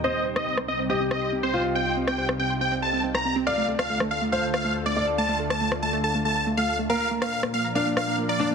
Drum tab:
SD |---r-r----r-----|---r-r-------r--|---r-r----r-----|---r-r----------|

SD |---r-r----r-----|